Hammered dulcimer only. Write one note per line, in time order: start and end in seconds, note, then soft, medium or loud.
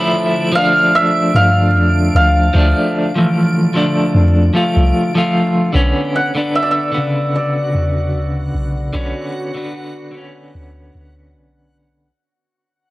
0.55 1.01 F5 loud
0.95 1.42 E5 loud
1.36 2.15 F5 loud
2.16 4.91 F5 loud
6.16 6.26 F#5 loud
6.55 6.71 E5 loud
6.63 7.35 D5 medium
6.71 9.01 E5 loud
7.36 9.82 D5 medium